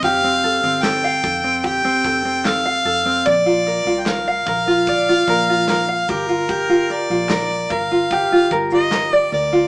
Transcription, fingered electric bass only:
\new Staff \with { instrumentName = "Fingered electric bass" } { \clef bass \time 4/4 \key f \major \tempo 4 = 74 f,,8. g,,8. f,,4 f,,4 f,,8 | bes,,8. c,8. bes,,4 bes,,4 g,,8~ | g,,8. bes,,8. g,,4 g,,4 d,8 | }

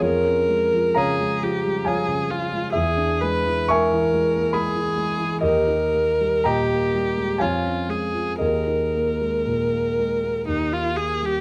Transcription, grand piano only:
<<
  \new Staff \with { instrumentName = "Grand piano" } { \time 3/4 \key ees \mixolydian \tempo 4 = 63 <f' aes' des''>4 <des'' f'' bes''>4 <des'' f'' aes''>4 | <gis' e''>4 <e'' gis'' des'''>4 ces'''4 | <g' bes' ees''>4 <ees'' g'' bes''>4 <des'' f'' aes''>4 | <aes' bes' ees''>2~ <aes' bes' ees''>8 r8 | }
  \new Staff \with { instrumentName = "Grand piano" } { \clef bass \time 3/4 \key ees \mixolydian f,16 des'16 aes16 f16 des16 aes16 f16 g16 f16 des16 f16 aes16 | e,16 d'16 gis16 e16 gis16 e16 gis16 bes16 gis16 e16 gis16 e16 | ees,16 ees'16 bes16 g16 bes,16 bes16 g16 aes16 f,16 des'16 aes16 f16 | ees,16 ees'16 bes16 aes16 bes,16 bes16 aes16 bes16 ees,16 ees'8 g16 | }
>>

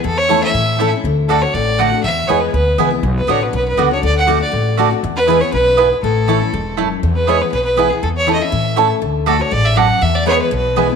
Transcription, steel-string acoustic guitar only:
\new Staff \with { instrumentName = "Steel-string acoustic guitar" } { \time 4/4 \key a \major \tempo 4 = 241 << { r4 <e a cis' e'>4 r4 <e a cis' e'>8 <cis' e'>8 | r4 <d a d' fis'>8 <d' fis'>8 r4 <d a d' fis'>8 <d' fis'>8 | r4 <e gis b e'>4 r4 <e gis b e'>8 <b e'>8 | r4 <d b d' fis'>8 <d' fis'>8 r4 <d b d' fis'>8 <d' fis'>8 |
r4 <d a d' fis'>8 <d' fis'>8 r4 <d a d' fis'>8 <d' fis'>8 | r4 <e gis b e'>8 <b e'>8 r2 | r4 <e a cis' e'>8 <cis' e'>8 r2 | r4 <e gis b e'>8 <b e'>8 r4 <e gis b e'>8 <b e'>8 |
r4 <e a cis' e'>8 <cis' e'>8 r4 <e a cis' e'>4 | r4 <d a d' fis'>8 <d' fis'>8 r2 | r4 <e gis b e'>4 r4 <e gis b e'>8 <b e'>8 | } \\ { e,2 e2 | d2 a,2 | e,2 b,2 | b,2 fis,2 |
d2 a,2 | e,2 fis,4 gis,4 | a,2 gis,4 fis,4 | e,2 b,2 |
e,2 e2 | d2 gis,4 fis,4 | e,2 b,2 | } >> }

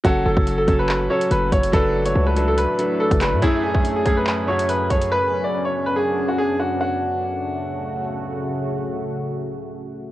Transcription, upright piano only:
\new Staff \with { instrumentName = "Upright piano" } { \time 4/4 \key fis \minor \tempo 4 = 142 fis'8 a'8. a'8 b'8. cis''8 b'8 cis''8 | a'8. cis''8 b'8 a'16 b'4 a'8 b'8 | e'8 gis'8. gis'8 b'8. cis''8 b'8 cis''8 | b'8. d''8 cis''8 b'16 gis'8. fis'16 gis'8 fis'8 |
fis'2. r4 | r1 | }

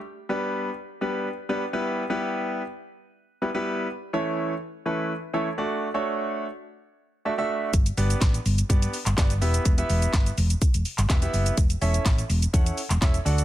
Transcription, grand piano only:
\new Staff \with { instrumentName = "Grand piano" } { \time 4/4 \key g \lydian \tempo 4 = 125 << { r1 | r1 | r1 | r2. d''4 |
r1 | r1 | r1 | } \\ { r8 <g b d' g' b'>8. r8. <g b d' g' b'>8 r8 <g b d' g' b'>16 r16 <g b e' g' b'>8 | r16 <g b e' g' b'>4 r4. r16 <g b e' g' b'>16 <g b e' g' b'>8. | r8 <e a cis' e' a' cis''>8. r8. <e a cis' e' a' b'>8 r8 <e a cis' e' a' cis''>16 r16 <a d' fis' a' d''>8 | r16 <a d' fis' a' cis''>4 r4. r16 <a d' fis' a' e''>16 <a d' fis' a' e''>8. |
r8 <b d' g' b' d''>8. r8. <b d' g' b' d''>8 r8 <b d' g' b' d''>16 r16 <b e' g' b' e''>8 | r16 <b e' g' b' e''>4 r4. r16 <b e' g' b' e''>16 <b e' g' b' e''>8. | r8 <cis' e' a' cis'' e''>8. r8. <cis' e' a' cis'' fis''>8 r8 <cis' e' a' cis'' e''>16 r16 <d' fis' a' d'' fis''>8 | } >> }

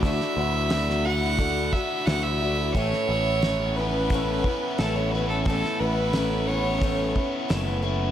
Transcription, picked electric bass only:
\new Staff \with { instrumentName = "Picked electric bass" } { \clef bass \time 4/4 \key a \mixolydian \tempo 4 = 88 d,16 r16 d,2 r8 d,4 | a,,16 r16 a,,2 r8 a,,4 | a,,16 r16 a,,2 r8 fis,,4 | }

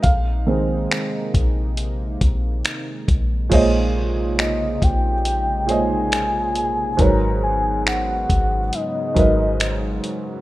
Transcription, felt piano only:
<<
  \new Staff \with { instrumentName = "Felt piano" } { \time 4/4 \key bes \dorian \tempo 4 = 69 f''2. r4 | <bes, aes c'' des'' ees''>2 r8 <bes, aes c'' des'' ees''>4. | <aes, ges bes' ces'' des''>2 r8 <aes, ges bes' ces'' ees''>4. | }
  \new Staff \with { instrumentName = "Felt piano" } { \clef bass \time 4/4 \key bes \dorian r8 <ees aes c'>4. r2 | r1 | r1 | }
>>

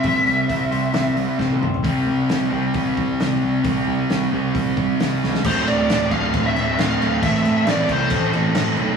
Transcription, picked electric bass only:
\new Staff \with { instrumentName = "Picked electric bass" } { \clef bass \time 4/4 \key c \mixolydian \tempo 4 = 134 bes,,8 c,8 c,8 c,8 c,4 c,8 c,8 | c,8 c,8 c,8 c,8 c,8 c,8 c,8 c,8 | c,8 c,8 c,8 c,8 c,8 c,8 c,8 cis,8 | d,,8 d,,8 d,,8 d,,8 d,,8 d,,8 d,,8 d,,8 |
a,,8 a,8 a,,8 c,8 a,,8 a,,8 a,,8 b,,8 | }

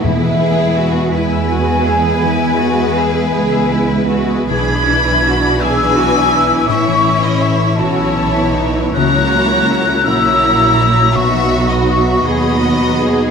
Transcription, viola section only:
\new Staff \with { instrumentName = "Viola section" } { \time 12/8 \key e \major \tempo 4. = 55 << { b4. b1~ b8 | d'4. d'4. cis'4. cis'8. b8. | ais4. ais4. b4. b4. | } \\ { gis4. gis1~ gis8 | e4. e4. e4. e4. | fis4. fis4. fis4. fis4. | } >> }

